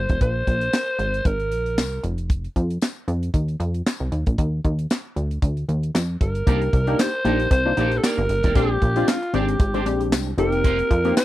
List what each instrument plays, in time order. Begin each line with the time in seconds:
Already playing: alto saxophone C5
0.09 analog synth bass F1, kick, closed hi-hat
0.21 analog synth bass A#1, alto saxophone C5, kick, closed hi-hat
0.47 analog synth bass A#1, kick, closed hi-hat
0.61 closed hi-hat
0.73 snare, clap, tambourine
0.99 analog synth bass G#1, closed hi-hat
1.14 closed hi-hat
1.25 analog synth bass G#1, alto saxophone A#4, kick, closed hi-hat
1.40 closed hi-hat
1.51 analog synth bass A#1, closed hi-hat
1.66 closed hi-hat
1.77 analog synth bass C2, snare, clap, tambourine
2.04 analog synth bass F1, closed hi-hat
2.18 closed hi-hat
2.30 kick, closed hi-hat
2.44 closed hi-hat
2.56 analog synth bass F2, kick, closed hi-hat
2.71 closed hi-hat
2.82 snare, clap, tambourine
3.08 analog synth bass F2, closed hi-hat
3.23 closed hi-hat
3.34 analog synth bass D#2, kick, closed hi-hat
3.48 closed hi-hat
3.60 analog synth bass F2, closed hi-hat
3.75 closed hi-hat
3.87 snare, clap, tambourine
4.00 analog synth bass C2
4.12 analog synth bass D#2, closed hi-hat
4.26 analog synth bass A#1, kick, closed hi-hat
4.38 analog synth bass D#2, kick, closed hi-hat
4.65 analog synth bass D#2, kick, closed hi-hat
4.79 closed hi-hat
4.90 snare, clap, tambourine
5.16 analog synth bass D2, closed hi-hat
5.31 closed hi-hat
5.42 analog synth bass D2, kick, closed hi-hat
5.57 closed hi-hat
5.69 analog synth bass D#2, closed hi-hat
5.83 closed hi-hat
5.95 analog synth bass F2, snare, clap, tambourine
6.21 analog synth bass G1, alto saxophone A#4, kick, closed hi-hat
6.35 closed hi-hat
6.46 analog synth bass C2, clean electric guitar A#3 D#4 G4 D5, analog polysynth A#3 D4 D#4 G4, kick, closed hi-hat
6.61 muted clean electric guitar stroke, closed hi-hat
6.73 analog synth bass C2, muted clean electric guitar stroke, kick, closed hi-hat
6.87 analog polysynth A#3 D4 D#4 G4, clean electric guitar A#3 D#4 G4 D5, closed hi-hat
6.99 alto saxophone C5, muted clean electric guitar stroke, snare, clap, tambourine
7.14 muted clean electric guitar stroke
7.25 analog synth bass A#1, analog polysynth A#3 D4 D#4 G4, clean electric guitar A#3 D#4 G4 D5, closed hi-hat
7.40 muted clean electric guitar stroke, closed hi-hat
7.51 analog synth bass C2, alto saxophone C5, muted clean electric guitar stroke, kick, closed hi-hat
7.66 analog polysynth A#3 D4 D#4 F4, muted clean electric guitar stroke
7.77 analog synth bass A#1, analog polysynth A#3 D4 D#4 G4, clean electric guitar A#3 D#4 G4 D5, closed hi-hat
7.92 muted clean electric guitar stroke, closed hi-hat
7.98 alto saxophone A4
8.03 clean electric guitar A#3 D#4 G4 D5, alto saxophone A#4, snare, clap, tambourine
8.18 analog synth bass G1, muted clean electric guitar stroke, closed hi-hat
8.29 analog synth bass G1, muted clean electric guitar stroke, closed hi-hat
8.43 analog synth bass F1, clean electric guitar A#3 D#4 G4 D5, kick, closed hi-hat
8.55 analog synth bass A#1, clean electric guitar G#3 D4 G4 C5, analog polysynth G#3 C4 D4 G4, alto saxophone G4, kick, closed hi-hat
8.70 muted clean electric guitar stroke
8.81 analog synth bass A#1, muted clean electric guitar stroke, kick, closed hi-hat
8.96 analog polysynth G#3 C4 D4 F4, clean electric guitar G#3 D4 G4 D5, closed hi-hat
9.07 alto saxophone F4, muted clean electric guitar stroke, snare, clap, tambourine
9.22 muted clean electric guitar stroke, closed hi-hat
9.33 analog synth bass G#1, clean electric guitar G#3 D4 G4 D5, analog polysynth G#3 C4 D4 G4, alto saxophone G4, closed hi-hat
9.48 muted clean electric guitar stroke, closed hi-hat
9.59 analog synth bass G#1, muted clean electric guitar stroke, kick, closed hi-hat
9.74 analog polysynth G#3 C4 D4 G4, clean electric guitar G#3 D4 G4 C5, closed hi-hat
9.86 analog synth bass A#1, analog polysynth G#3 C4 D4 G4, muted clean electric guitar stroke, closed hi-hat
10.00 muted clean electric guitar stroke, closed hi-hat
10.12 analog synth bass C2, muted clean electric guitar stroke, snare, clap, tambourine
10.26 muted clean electric guitar stroke
10.38 analog synth bass F1, analog polysynth A#3 C4 D#4 G4, alto saxophone A#4, closed hi-hat
10.52 muted clean electric guitar stroke, closed hi-hat
10.64 clean electric guitar A#3 D#4 F4 C5, kick, closed hi-hat
10.79 muted clean electric guitar stroke, closed hi-hat
10.90 analog synth bass F2, muted clean electric guitar stroke, kick, closed hi-hat
11.05 analog polysynth A#3 C4 D#4 G4, clean electric guitar A#3 D#4 F4 C5, closed hi-hat
11.16 alto saxophone C5, muted clean electric guitar stroke, snare, clap, tambourine